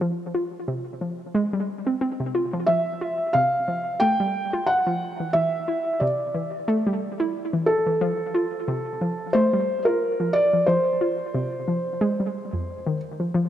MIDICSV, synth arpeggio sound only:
0, 0, Header, 1, 2, 480
1, 0, Start_track
1, 0, Tempo, 666667
1, 9, Time_signature, 4, 2, 24, 8
1, 9714, End_track
2, 0, Start_track
2, 0, Title_t, "Synth arpeggio sound"
2, 0, Program_c, 0, 84
2, 8, Note_on_c, 0, 53, 97
2, 111, Note_off_c, 0, 53, 0
2, 248, Note_on_c, 0, 65, 74
2, 351, Note_off_c, 0, 65, 0
2, 489, Note_on_c, 0, 48, 90
2, 557, Note_off_c, 0, 48, 0
2, 729, Note_on_c, 0, 53, 75
2, 797, Note_off_c, 0, 53, 0
2, 969, Note_on_c, 0, 56, 101
2, 1071, Note_off_c, 0, 56, 0
2, 1103, Note_on_c, 0, 55, 78
2, 1157, Note_off_c, 0, 55, 0
2, 1343, Note_on_c, 0, 60, 75
2, 1424, Note_off_c, 0, 60, 0
2, 1449, Note_on_c, 0, 60, 82
2, 1551, Note_off_c, 0, 60, 0
2, 1584, Note_on_c, 0, 48, 80
2, 1637, Note_off_c, 0, 48, 0
2, 1690, Note_on_c, 0, 65, 71
2, 1757, Note_off_c, 0, 65, 0
2, 1824, Note_on_c, 0, 53, 78
2, 1877, Note_off_c, 0, 53, 0
2, 1930, Note_on_c, 0, 53, 92
2, 2032, Note_off_c, 0, 53, 0
2, 2170, Note_on_c, 0, 65, 75
2, 2272, Note_off_c, 0, 65, 0
2, 2410, Note_on_c, 0, 48, 92
2, 2477, Note_off_c, 0, 48, 0
2, 2649, Note_on_c, 0, 53, 75
2, 2717, Note_off_c, 0, 53, 0
2, 2889, Note_on_c, 0, 57, 102
2, 2991, Note_off_c, 0, 57, 0
2, 3024, Note_on_c, 0, 55, 79
2, 3077, Note_off_c, 0, 55, 0
2, 3263, Note_on_c, 0, 65, 78
2, 3317, Note_off_c, 0, 65, 0
2, 3504, Note_on_c, 0, 53, 83
2, 3584, Note_off_c, 0, 53, 0
2, 3744, Note_on_c, 0, 52, 75
2, 3824, Note_off_c, 0, 52, 0
2, 3849, Note_on_c, 0, 52, 99
2, 3951, Note_off_c, 0, 52, 0
2, 4089, Note_on_c, 0, 64, 73
2, 4191, Note_off_c, 0, 64, 0
2, 4329, Note_on_c, 0, 48, 94
2, 4397, Note_off_c, 0, 48, 0
2, 4569, Note_on_c, 0, 52, 74
2, 4637, Note_off_c, 0, 52, 0
2, 4809, Note_on_c, 0, 57, 101
2, 4911, Note_off_c, 0, 57, 0
2, 4943, Note_on_c, 0, 55, 77
2, 4997, Note_off_c, 0, 55, 0
2, 5183, Note_on_c, 0, 64, 77
2, 5237, Note_off_c, 0, 64, 0
2, 5423, Note_on_c, 0, 52, 82
2, 5503, Note_off_c, 0, 52, 0
2, 5663, Note_on_c, 0, 52, 75
2, 5743, Note_off_c, 0, 52, 0
2, 5769, Note_on_c, 0, 53, 98
2, 5871, Note_off_c, 0, 53, 0
2, 6009, Note_on_c, 0, 65, 75
2, 6111, Note_off_c, 0, 65, 0
2, 6249, Note_on_c, 0, 48, 91
2, 6317, Note_off_c, 0, 48, 0
2, 6489, Note_on_c, 0, 53, 74
2, 6557, Note_off_c, 0, 53, 0
2, 6729, Note_on_c, 0, 57, 103
2, 6831, Note_off_c, 0, 57, 0
2, 6864, Note_on_c, 0, 55, 78
2, 6917, Note_off_c, 0, 55, 0
2, 7104, Note_on_c, 0, 65, 77
2, 7157, Note_off_c, 0, 65, 0
2, 7344, Note_on_c, 0, 53, 82
2, 7424, Note_off_c, 0, 53, 0
2, 7584, Note_on_c, 0, 53, 73
2, 7664, Note_off_c, 0, 53, 0
2, 7688, Note_on_c, 0, 53, 96
2, 7791, Note_off_c, 0, 53, 0
2, 7928, Note_on_c, 0, 65, 77
2, 8031, Note_off_c, 0, 65, 0
2, 8168, Note_on_c, 0, 48, 96
2, 8237, Note_off_c, 0, 48, 0
2, 8407, Note_on_c, 0, 53, 74
2, 8476, Note_off_c, 0, 53, 0
2, 8648, Note_on_c, 0, 56, 105
2, 8751, Note_off_c, 0, 56, 0
2, 8782, Note_on_c, 0, 55, 76
2, 8836, Note_off_c, 0, 55, 0
2, 9023, Note_on_c, 0, 41, 79
2, 9103, Note_off_c, 0, 41, 0
2, 9263, Note_on_c, 0, 51, 84
2, 9295, Note_off_c, 0, 51, 0
2, 9502, Note_on_c, 0, 53, 74
2, 9556, Note_off_c, 0, 53, 0
2, 9608, Note_on_c, 0, 53, 99
2, 9711, Note_off_c, 0, 53, 0
2, 9714, End_track
0, 0, End_of_file